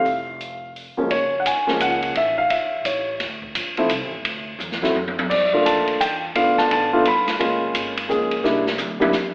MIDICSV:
0, 0, Header, 1, 5, 480
1, 0, Start_track
1, 0, Tempo, 349650
1, 67, Time_signature, 3, 2, 24, 8
1, 12826, End_track
2, 0, Start_track
2, 0, Title_t, "Upright piano"
2, 0, Program_c, 0, 0
2, 0, Note_on_c, 0, 77, 86
2, 975, Note_off_c, 0, 77, 0
2, 1334, Note_on_c, 0, 53, 57
2, 1336, Note_on_c, 0, 42, 57
2, 1341, Note_on_c, 0, 56, 55
2, 1345, Note_on_c, 0, 58, 55
2, 1348, Note_on_c, 0, 61, 64
2, 1494, Note_off_c, 0, 53, 0
2, 1495, Note_off_c, 0, 42, 0
2, 1498, Note_off_c, 0, 56, 0
2, 1500, Note_off_c, 0, 58, 0
2, 1501, Note_off_c, 0, 61, 0
2, 1523, Note_on_c, 0, 73, 78
2, 1919, Note_on_c, 0, 78, 66
2, 1939, Note_off_c, 0, 73, 0
2, 1992, Note_off_c, 0, 78, 0
2, 2015, Note_on_c, 0, 80, 83
2, 2290, Note_on_c, 0, 53, 58
2, 2297, Note_on_c, 0, 56, 53
2, 2299, Note_on_c, 0, 61, 64
2, 2301, Note_on_c, 0, 58, 53
2, 2453, Note_off_c, 0, 80, 0
2, 2493, Note_on_c, 0, 78, 82
2, 2917, Note_off_c, 0, 53, 0
2, 2920, Note_off_c, 0, 56, 0
2, 2921, Note_off_c, 0, 61, 0
2, 2922, Note_off_c, 0, 58, 0
2, 2979, Note_off_c, 0, 78, 0
2, 2982, Note_on_c, 0, 76, 89
2, 3265, Note_on_c, 0, 77, 85
2, 3280, Note_off_c, 0, 76, 0
2, 3428, Note_off_c, 0, 77, 0
2, 3437, Note_on_c, 0, 76, 73
2, 3923, Note_on_c, 0, 73, 63
2, 3932, Note_off_c, 0, 76, 0
2, 4285, Note_off_c, 0, 73, 0
2, 5185, Note_on_c, 0, 53, 62
2, 5191, Note_on_c, 0, 57, 59
2, 5194, Note_on_c, 0, 60, 60
2, 5199, Note_on_c, 0, 64, 74
2, 5343, Note_off_c, 0, 53, 0
2, 5346, Note_off_c, 0, 57, 0
2, 5348, Note_off_c, 0, 60, 0
2, 5351, Note_off_c, 0, 64, 0
2, 6612, Note_on_c, 0, 54, 63
2, 6623, Note_on_c, 0, 57, 61
2, 6632, Note_on_c, 0, 60, 59
2, 6633, Note_on_c, 0, 64, 72
2, 6777, Note_off_c, 0, 54, 0
2, 6782, Note_off_c, 0, 57, 0
2, 6787, Note_off_c, 0, 60, 0
2, 6788, Note_off_c, 0, 64, 0
2, 7273, Note_on_c, 0, 74, 80
2, 7589, Note_on_c, 0, 57, 59
2, 7594, Note_on_c, 0, 58, 52
2, 7594, Note_on_c, 0, 62, 55
2, 7601, Note_on_c, 0, 65, 64
2, 7723, Note_off_c, 0, 74, 0
2, 7764, Note_on_c, 0, 81, 78
2, 8207, Note_off_c, 0, 57, 0
2, 8208, Note_off_c, 0, 81, 0
2, 8210, Note_off_c, 0, 58, 0
2, 8210, Note_off_c, 0, 62, 0
2, 8213, Note_off_c, 0, 65, 0
2, 8245, Note_on_c, 0, 79, 81
2, 8688, Note_off_c, 0, 79, 0
2, 8719, Note_on_c, 0, 57, 52
2, 8721, Note_on_c, 0, 59, 50
2, 8727, Note_on_c, 0, 62, 54
2, 8728, Note_on_c, 0, 77, 88
2, 8730, Note_on_c, 0, 65, 60
2, 9034, Note_off_c, 0, 77, 0
2, 9038, Note_on_c, 0, 81, 87
2, 9195, Note_off_c, 0, 81, 0
2, 9235, Note_on_c, 0, 81, 86
2, 9440, Note_off_c, 0, 57, 0
2, 9440, Note_off_c, 0, 59, 0
2, 9443, Note_off_c, 0, 62, 0
2, 9445, Note_off_c, 0, 65, 0
2, 9512, Note_on_c, 0, 57, 74
2, 9515, Note_on_c, 0, 62, 65
2, 9517, Note_on_c, 0, 59, 65
2, 9518, Note_on_c, 0, 65, 82
2, 9665, Note_off_c, 0, 57, 0
2, 9667, Note_off_c, 0, 62, 0
2, 9668, Note_off_c, 0, 59, 0
2, 9669, Note_off_c, 0, 65, 0
2, 9709, Note_off_c, 0, 81, 0
2, 9715, Note_on_c, 0, 83, 88
2, 10060, Note_off_c, 0, 83, 0
2, 10146, Note_on_c, 0, 56, 58
2, 10146, Note_on_c, 0, 58, 58
2, 10157, Note_on_c, 0, 61, 56
2, 10158, Note_on_c, 0, 65, 67
2, 10871, Note_off_c, 0, 56, 0
2, 10871, Note_off_c, 0, 58, 0
2, 10876, Note_off_c, 0, 61, 0
2, 10877, Note_off_c, 0, 65, 0
2, 11100, Note_on_c, 0, 56, 60
2, 11107, Note_on_c, 0, 61, 52
2, 11109, Note_on_c, 0, 58, 55
2, 11117, Note_on_c, 0, 68, 63
2, 11560, Note_off_c, 0, 58, 0
2, 11581, Note_on_c, 0, 58, 58
2, 11584, Note_on_c, 0, 55, 63
2, 11585, Note_off_c, 0, 56, 0
2, 11588, Note_off_c, 0, 61, 0
2, 11588, Note_on_c, 0, 62, 62
2, 11593, Note_off_c, 0, 68, 0
2, 11594, Note_on_c, 0, 64, 72
2, 11857, Note_off_c, 0, 58, 0
2, 11859, Note_off_c, 0, 55, 0
2, 11860, Note_off_c, 0, 62, 0
2, 11863, Note_off_c, 0, 64, 0
2, 12355, Note_on_c, 0, 55, 76
2, 12361, Note_on_c, 0, 58, 65
2, 12363, Note_on_c, 0, 62, 68
2, 12374, Note_on_c, 0, 64, 79
2, 12522, Note_off_c, 0, 55, 0
2, 12525, Note_off_c, 0, 58, 0
2, 12526, Note_off_c, 0, 62, 0
2, 12532, Note_off_c, 0, 64, 0
2, 12826, End_track
3, 0, Start_track
3, 0, Title_t, "Upright bass"
3, 0, Program_c, 1, 32
3, 67, Note_on_c, 1, 29, 77
3, 1278, Note_off_c, 1, 29, 0
3, 1514, Note_on_c, 1, 30, 78
3, 1980, Note_off_c, 1, 30, 0
3, 1997, Note_on_c, 1, 34, 79
3, 2462, Note_off_c, 1, 34, 0
3, 2472, Note_on_c, 1, 37, 82
3, 2940, Note_off_c, 1, 37, 0
3, 2948, Note_on_c, 1, 33, 77
3, 3418, Note_off_c, 1, 33, 0
3, 3432, Note_on_c, 1, 34, 80
3, 3900, Note_off_c, 1, 34, 0
3, 3911, Note_on_c, 1, 33, 85
3, 4380, Note_off_c, 1, 33, 0
3, 4396, Note_on_c, 1, 38, 78
3, 4863, Note_off_c, 1, 38, 0
3, 4873, Note_on_c, 1, 34, 86
3, 5337, Note_off_c, 1, 34, 0
3, 5345, Note_on_c, 1, 36, 83
3, 5532, Note_off_c, 1, 36, 0
3, 5532, Note_on_c, 1, 33, 54
3, 5681, Note_off_c, 1, 33, 0
3, 5689, Note_on_c, 1, 29, 61
3, 5822, Note_off_c, 1, 29, 0
3, 5831, Note_on_c, 1, 38, 83
3, 6287, Note_off_c, 1, 38, 0
3, 6295, Note_on_c, 1, 40, 83
3, 6773, Note_off_c, 1, 40, 0
3, 6784, Note_on_c, 1, 42, 77
3, 7258, Note_off_c, 1, 42, 0
3, 7277, Note_on_c, 1, 43, 73
3, 7744, Note_off_c, 1, 43, 0
3, 7768, Note_on_c, 1, 41, 81
3, 8229, Note_off_c, 1, 41, 0
3, 8246, Note_on_c, 1, 40, 79
3, 8708, Note_off_c, 1, 40, 0
3, 8720, Note_on_c, 1, 38, 76
3, 9184, Note_off_c, 1, 38, 0
3, 9200, Note_on_c, 1, 33, 81
3, 9664, Note_off_c, 1, 33, 0
3, 9681, Note_on_c, 1, 31, 82
3, 10144, Note_off_c, 1, 31, 0
3, 10163, Note_on_c, 1, 30, 76
3, 10624, Note_off_c, 1, 30, 0
3, 10634, Note_on_c, 1, 32, 87
3, 11099, Note_off_c, 1, 32, 0
3, 11114, Note_on_c, 1, 34, 86
3, 11578, Note_off_c, 1, 34, 0
3, 11584, Note_on_c, 1, 36, 81
3, 12045, Note_off_c, 1, 36, 0
3, 12053, Note_on_c, 1, 38, 81
3, 12511, Note_off_c, 1, 38, 0
3, 12520, Note_on_c, 1, 40, 82
3, 12826, Note_off_c, 1, 40, 0
3, 12826, End_track
4, 0, Start_track
4, 0, Title_t, "Muted upright bass strokes"
4, 1355, Note_on_c, 9, 29, 33
4, 1492, Note_off_c, 9, 29, 0
4, 12826, End_track
5, 0, Start_track
5, 0, Title_t, "Drums"
5, 68, Note_on_c, 9, 36, 31
5, 77, Note_on_c, 9, 46, 38
5, 205, Note_off_c, 9, 36, 0
5, 214, Note_off_c, 9, 46, 0
5, 555, Note_on_c, 9, 42, 48
5, 692, Note_off_c, 9, 42, 0
5, 1041, Note_on_c, 9, 46, 39
5, 1179, Note_off_c, 9, 46, 0
5, 1515, Note_on_c, 9, 36, 23
5, 1517, Note_on_c, 9, 51, 55
5, 1653, Note_off_c, 9, 36, 0
5, 1654, Note_off_c, 9, 51, 0
5, 1995, Note_on_c, 9, 36, 24
5, 1999, Note_on_c, 9, 44, 61
5, 1999, Note_on_c, 9, 51, 64
5, 2132, Note_off_c, 9, 36, 0
5, 2136, Note_off_c, 9, 44, 0
5, 2136, Note_off_c, 9, 51, 0
5, 2307, Note_on_c, 9, 38, 49
5, 2444, Note_off_c, 9, 38, 0
5, 2475, Note_on_c, 9, 36, 22
5, 2475, Note_on_c, 9, 44, 59
5, 2475, Note_on_c, 9, 51, 60
5, 2612, Note_off_c, 9, 36, 0
5, 2613, Note_off_c, 9, 44, 0
5, 2613, Note_off_c, 9, 51, 0
5, 2779, Note_on_c, 9, 51, 43
5, 2916, Note_off_c, 9, 51, 0
5, 2955, Note_on_c, 9, 36, 25
5, 2956, Note_on_c, 9, 51, 56
5, 3092, Note_off_c, 9, 36, 0
5, 3093, Note_off_c, 9, 51, 0
5, 3434, Note_on_c, 9, 51, 59
5, 3436, Note_on_c, 9, 36, 20
5, 3571, Note_off_c, 9, 51, 0
5, 3573, Note_off_c, 9, 36, 0
5, 3910, Note_on_c, 9, 44, 52
5, 3910, Note_on_c, 9, 51, 61
5, 3914, Note_on_c, 9, 36, 21
5, 4048, Note_off_c, 9, 44, 0
5, 4048, Note_off_c, 9, 51, 0
5, 4051, Note_off_c, 9, 36, 0
5, 4390, Note_on_c, 9, 38, 36
5, 4390, Note_on_c, 9, 51, 55
5, 4395, Note_on_c, 9, 36, 22
5, 4527, Note_off_c, 9, 38, 0
5, 4527, Note_off_c, 9, 51, 0
5, 4532, Note_off_c, 9, 36, 0
5, 4697, Note_on_c, 9, 36, 53
5, 4834, Note_off_c, 9, 36, 0
5, 4873, Note_on_c, 9, 44, 56
5, 4873, Note_on_c, 9, 51, 67
5, 4876, Note_on_c, 9, 36, 19
5, 5011, Note_off_c, 9, 44, 0
5, 5011, Note_off_c, 9, 51, 0
5, 5013, Note_off_c, 9, 36, 0
5, 5176, Note_on_c, 9, 51, 42
5, 5313, Note_off_c, 9, 51, 0
5, 5345, Note_on_c, 9, 44, 49
5, 5345, Note_on_c, 9, 51, 59
5, 5351, Note_on_c, 9, 36, 24
5, 5482, Note_off_c, 9, 44, 0
5, 5482, Note_off_c, 9, 51, 0
5, 5488, Note_off_c, 9, 36, 0
5, 5832, Note_on_c, 9, 36, 17
5, 5832, Note_on_c, 9, 51, 58
5, 5969, Note_off_c, 9, 51, 0
5, 5970, Note_off_c, 9, 36, 0
5, 6311, Note_on_c, 9, 44, 59
5, 6311, Note_on_c, 9, 48, 43
5, 6449, Note_off_c, 9, 44, 0
5, 6449, Note_off_c, 9, 48, 0
5, 6477, Note_on_c, 9, 38, 51
5, 6614, Note_off_c, 9, 38, 0
5, 6639, Note_on_c, 9, 38, 60
5, 6776, Note_off_c, 9, 38, 0
5, 6800, Note_on_c, 9, 48, 56
5, 6937, Note_off_c, 9, 48, 0
5, 6966, Note_on_c, 9, 48, 62
5, 7103, Note_off_c, 9, 48, 0
5, 7120, Note_on_c, 9, 48, 81
5, 7258, Note_off_c, 9, 48, 0
5, 7282, Note_on_c, 9, 36, 65
5, 7288, Note_on_c, 9, 49, 67
5, 7419, Note_off_c, 9, 36, 0
5, 7425, Note_off_c, 9, 49, 0
5, 7764, Note_on_c, 9, 36, 23
5, 7770, Note_on_c, 9, 44, 52
5, 7770, Note_on_c, 9, 51, 68
5, 7901, Note_off_c, 9, 36, 0
5, 7907, Note_off_c, 9, 44, 0
5, 7907, Note_off_c, 9, 51, 0
5, 8065, Note_on_c, 9, 51, 42
5, 8202, Note_off_c, 9, 51, 0
5, 8243, Note_on_c, 9, 36, 23
5, 8248, Note_on_c, 9, 44, 57
5, 8248, Note_on_c, 9, 51, 62
5, 8380, Note_off_c, 9, 36, 0
5, 8385, Note_off_c, 9, 44, 0
5, 8385, Note_off_c, 9, 51, 0
5, 8721, Note_on_c, 9, 36, 18
5, 8721, Note_on_c, 9, 51, 59
5, 8858, Note_off_c, 9, 36, 0
5, 8859, Note_off_c, 9, 51, 0
5, 9029, Note_on_c, 9, 38, 50
5, 9166, Note_off_c, 9, 38, 0
5, 9203, Note_on_c, 9, 36, 25
5, 9211, Note_on_c, 9, 51, 56
5, 9340, Note_off_c, 9, 36, 0
5, 9348, Note_off_c, 9, 51, 0
5, 9679, Note_on_c, 9, 36, 20
5, 9682, Note_on_c, 9, 44, 52
5, 9682, Note_on_c, 9, 51, 59
5, 9817, Note_off_c, 9, 36, 0
5, 9819, Note_off_c, 9, 44, 0
5, 9819, Note_off_c, 9, 51, 0
5, 9988, Note_on_c, 9, 38, 57
5, 9988, Note_on_c, 9, 51, 44
5, 10125, Note_off_c, 9, 38, 0
5, 10125, Note_off_c, 9, 51, 0
5, 10159, Note_on_c, 9, 36, 22
5, 10164, Note_on_c, 9, 51, 57
5, 10297, Note_off_c, 9, 36, 0
5, 10301, Note_off_c, 9, 51, 0
5, 10633, Note_on_c, 9, 44, 60
5, 10633, Note_on_c, 9, 51, 67
5, 10636, Note_on_c, 9, 36, 22
5, 10770, Note_off_c, 9, 44, 0
5, 10770, Note_off_c, 9, 51, 0
5, 10773, Note_off_c, 9, 36, 0
5, 10945, Note_on_c, 9, 51, 63
5, 11082, Note_off_c, 9, 51, 0
5, 11115, Note_on_c, 9, 36, 18
5, 11125, Note_on_c, 9, 44, 56
5, 11252, Note_off_c, 9, 36, 0
5, 11262, Note_off_c, 9, 44, 0
5, 11410, Note_on_c, 9, 51, 44
5, 11547, Note_off_c, 9, 51, 0
5, 11594, Note_on_c, 9, 38, 45
5, 11731, Note_off_c, 9, 38, 0
5, 11900, Note_on_c, 9, 38, 66
5, 12037, Note_off_c, 9, 38, 0
5, 12053, Note_on_c, 9, 44, 59
5, 12053, Note_on_c, 9, 48, 61
5, 12190, Note_off_c, 9, 44, 0
5, 12190, Note_off_c, 9, 48, 0
5, 12375, Note_on_c, 9, 48, 85
5, 12513, Note_off_c, 9, 48, 0
5, 12531, Note_on_c, 9, 38, 52
5, 12531, Note_on_c, 9, 44, 57
5, 12668, Note_off_c, 9, 38, 0
5, 12668, Note_off_c, 9, 44, 0
5, 12826, End_track
0, 0, End_of_file